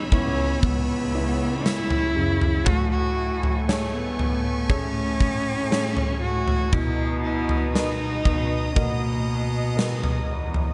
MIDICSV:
0, 0, Header, 1, 6, 480
1, 0, Start_track
1, 0, Key_signature, 5, "major"
1, 0, Tempo, 1016949
1, 1256, Time_signature, 4, 2, 24, 8
1, 5068, End_track
2, 0, Start_track
2, 0, Title_t, "Analog synth pad"
2, 0, Program_c, 0, 89
2, 0, Note_on_c, 0, 73, 77
2, 0, Note_on_c, 0, 83, 69
2, 0, Note_on_c, 0, 88, 81
2, 1237, Note_off_c, 0, 83, 0
2, 1238, Note_off_c, 0, 73, 0
2, 1244, Note_off_c, 0, 88, 0
2, 1251, Note_on_c, 0, 80, 70
2, 1254, Note_on_c, 0, 85, 81
2, 1255, Note_on_c, 0, 57, 72
2, 3155, Note_off_c, 0, 80, 0
2, 3156, Note_off_c, 0, 85, 0
2, 3157, Note_off_c, 0, 57, 0
2, 3182, Note_on_c, 0, 87, 90
2, 3184, Note_on_c, 0, 82, 73
2, 3188, Note_on_c, 0, 75, 76
2, 5068, Note_off_c, 0, 75, 0
2, 5068, Note_off_c, 0, 82, 0
2, 5068, Note_off_c, 0, 87, 0
2, 5068, End_track
3, 0, Start_track
3, 0, Title_t, "Grand piano"
3, 0, Program_c, 1, 0
3, 0, Control_c, 1, 64, 127
3, 0, Note_on_c, 1, 49, 64
3, 0, Note_on_c, 1, 52, 59
3, 0, Note_on_c, 1, 59, 49
3, 0, Note_on_c, 1, 61, 52
3, 56, Note_off_c, 1, 59, 0
3, 56, Note_on_c, 1, 59, 47
3, 58, Note_off_c, 1, 61, 0
3, 58, Note_on_c, 1, 61, 39
3, 60, Note_on_c, 1, 64, 52
3, 522, Note_off_c, 1, 59, 0
3, 523, Note_off_c, 1, 61, 0
3, 524, Note_off_c, 1, 64, 0
3, 540, Note_on_c, 1, 59, 47
3, 541, Note_on_c, 1, 61, 48
3, 543, Note_on_c, 1, 64, 53
3, 998, Note_off_c, 1, 49, 0
3, 1004, Note_off_c, 1, 59, 0
3, 1004, Note_off_c, 1, 61, 0
3, 1005, Note_off_c, 1, 64, 0
3, 1020, Note_on_c, 1, 49, 64
3, 1251, Note_off_c, 1, 49, 0
3, 1258, Note_on_c, 1, 57, 70
3, 1262, Control_c, 1, 64, 0
3, 1265, Note_off_c, 1, 52, 0
3, 1351, Control_c, 1, 64, 127
3, 1736, Note_on_c, 1, 68, 49
3, 1739, Note_on_c, 1, 69, 46
3, 1739, Note_on_c, 1, 73, 59
3, 2202, Note_off_c, 1, 68, 0
3, 2203, Note_off_c, 1, 69, 0
3, 2203, Note_off_c, 1, 73, 0
3, 2216, Note_on_c, 1, 68, 50
3, 2218, Note_on_c, 1, 69, 50
3, 2219, Note_on_c, 1, 73, 57
3, 2682, Note_off_c, 1, 68, 0
3, 2683, Note_off_c, 1, 69, 0
3, 2683, Note_off_c, 1, 73, 0
3, 2692, Note_on_c, 1, 68, 47
3, 2696, Note_on_c, 1, 69, 44
3, 2696, Note_on_c, 1, 73, 52
3, 3158, Note_off_c, 1, 57, 0
3, 3160, Note_off_c, 1, 68, 0
3, 3161, Note_off_c, 1, 69, 0
3, 3162, Note_off_c, 1, 73, 0
3, 3174, Note_on_c, 1, 47, 68
3, 3182, Control_c, 1, 64, 0
3, 3252, Control_c, 1, 64, 127
3, 3654, Note_on_c, 1, 70, 51
3, 3656, Note_on_c, 1, 71, 45
3, 3659, Note_on_c, 1, 75, 55
3, 4120, Note_off_c, 1, 70, 0
3, 4122, Note_off_c, 1, 71, 0
3, 4123, Note_off_c, 1, 75, 0
3, 4134, Note_on_c, 1, 70, 54
3, 4137, Note_on_c, 1, 66, 45
3, 4138, Note_on_c, 1, 75, 59
3, 4600, Note_off_c, 1, 70, 0
3, 4602, Note_off_c, 1, 66, 0
3, 4602, Note_off_c, 1, 75, 0
3, 4609, Note_on_c, 1, 70, 49
3, 4611, Note_on_c, 1, 71, 42
3, 4613, Note_on_c, 1, 75, 49
3, 5068, Note_off_c, 1, 47, 0
3, 5068, Note_off_c, 1, 70, 0
3, 5068, Note_off_c, 1, 71, 0
3, 5068, Note_off_c, 1, 75, 0
3, 5068, End_track
4, 0, Start_track
4, 0, Title_t, "Cello"
4, 0, Program_c, 2, 42
4, 52, Note_on_c, 2, 61, 100
4, 293, Note_on_c, 2, 59, 95
4, 300, Note_off_c, 2, 61, 0
4, 773, Note_on_c, 2, 64, 107
4, 780, Note_off_c, 2, 59, 0
4, 1251, Note_on_c, 2, 66, 104
4, 1258, Note_off_c, 2, 64, 0
4, 1370, Note_off_c, 2, 66, 0
4, 1373, Note_on_c, 2, 66, 109
4, 1716, Note_off_c, 2, 66, 0
4, 1735, Note_on_c, 2, 57, 90
4, 1854, Note_on_c, 2, 59, 94
4, 1861, Note_off_c, 2, 57, 0
4, 2217, Note_on_c, 2, 61, 103
4, 2224, Note_off_c, 2, 59, 0
4, 2931, Note_off_c, 2, 61, 0
4, 2934, Note_on_c, 2, 66, 99
4, 3174, Note_on_c, 2, 64, 97
4, 3182, Note_off_c, 2, 66, 0
4, 3408, Note_off_c, 2, 64, 0
4, 3411, Note_on_c, 2, 64, 84
4, 3636, Note_off_c, 2, 64, 0
4, 3656, Note_on_c, 2, 63, 87
4, 4135, Note_on_c, 2, 58, 74
4, 4142, Note_off_c, 2, 63, 0
4, 4615, Note_off_c, 2, 58, 0
4, 5068, End_track
5, 0, Start_track
5, 0, Title_t, "Cello section"
5, 0, Program_c, 3, 48
5, 57, Note_on_c, 3, 37, 101
5, 280, Note_off_c, 3, 37, 0
5, 296, Note_on_c, 3, 37, 99
5, 997, Note_off_c, 3, 37, 0
5, 1013, Note_on_c, 3, 42, 78
5, 1237, Note_off_c, 3, 42, 0
5, 1256, Note_on_c, 3, 45, 116
5, 1957, Note_off_c, 3, 45, 0
5, 1972, Note_on_c, 3, 45, 82
5, 2197, Note_off_c, 3, 45, 0
5, 2218, Note_on_c, 3, 45, 95
5, 2918, Note_off_c, 3, 45, 0
5, 2934, Note_on_c, 3, 45, 82
5, 3158, Note_off_c, 3, 45, 0
5, 3173, Note_on_c, 3, 47, 107
5, 3876, Note_off_c, 3, 47, 0
5, 3896, Note_on_c, 3, 47, 92
5, 4119, Note_off_c, 3, 47, 0
5, 4133, Note_on_c, 3, 47, 90
5, 4836, Note_off_c, 3, 47, 0
5, 4856, Note_on_c, 3, 40, 82
5, 5068, Note_off_c, 3, 40, 0
5, 5068, End_track
6, 0, Start_track
6, 0, Title_t, "Drums"
6, 57, Note_on_c, 9, 36, 86
6, 58, Note_on_c, 9, 43, 63
6, 104, Note_off_c, 9, 36, 0
6, 105, Note_off_c, 9, 43, 0
6, 297, Note_on_c, 9, 36, 99
6, 297, Note_on_c, 9, 43, 65
6, 344, Note_off_c, 9, 36, 0
6, 344, Note_off_c, 9, 43, 0
6, 783, Note_on_c, 9, 38, 109
6, 830, Note_off_c, 9, 38, 0
6, 899, Note_on_c, 9, 43, 68
6, 946, Note_off_c, 9, 43, 0
6, 1140, Note_on_c, 9, 43, 60
6, 1187, Note_off_c, 9, 43, 0
6, 1256, Note_on_c, 9, 43, 106
6, 1258, Note_on_c, 9, 36, 116
6, 1303, Note_off_c, 9, 43, 0
6, 1305, Note_off_c, 9, 36, 0
6, 1621, Note_on_c, 9, 43, 63
6, 1668, Note_off_c, 9, 43, 0
6, 1742, Note_on_c, 9, 38, 102
6, 1789, Note_off_c, 9, 38, 0
6, 1979, Note_on_c, 9, 43, 64
6, 2026, Note_off_c, 9, 43, 0
6, 2216, Note_on_c, 9, 36, 102
6, 2218, Note_on_c, 9, 43, 65
6, 2264, Note_off_c, 9, 36, 0
6, 2265, Note_off_c, 9, 43, 0
6, 2457, Note_on_c, 9, 36, 88
6, 2504, Note_off_c, 9, 36, 0
6, 2701, Note_on_c, 9, 38, 110
6, 2748, Note_off_c, 9, 38, 0
6, 2816, Note_on_c, 9, 43, 70
6, 2863, Note_off_c, 9, 43, 0
6, 3057, Note_on_c, 9, 43, 60
6, 3104, Note_off_c, 9, 43, 0
6, 3175, Note_on_c, 9, 43, 102
6, 3176, Note_on_c, 9, 36, 109
6, 3222, Note_off_c, 9, 43, 0
6, 3223, Note_off_c, 9, 36, 0
6, 3536, Note_on_c, 9, 43, 62
6, 3583, Note_off_c, 9, 43, 0
6, 3660, Note_on_c, 9, 38, 102
6, 3707, Note_off_c, 9, 38, 0
6, 3896, Note_on_c, 9, 36, 81
6, 3898, Note_on_c, 9, 43, 64
6, 3943, Note_off_c, 9, 36, 0
6, 3945, Note_off_c, 9, 43, 0
6, 4136, Note_on_c, 9, 36, 99
6, 4137, Note_on_c, 9, 43, 58
6, 4183, Note_off_c, 9, 36, 0
6, 4184, Note_off_c, 9, 43, 0
6, 4620, Note_on_c, 9, 38, 112
6, 4667, Note_off_c, 9, 38, 0
6, 4737, Note_on_c, 9, 43, 72
6, 4784, Note_off_c, 9, 43, 0
6, 4976, Note_on_c, 9, 43, 62
6, 5024, Note_off_c, 9, 43, 0
6, 5068, End_track
0, 0, End_of_file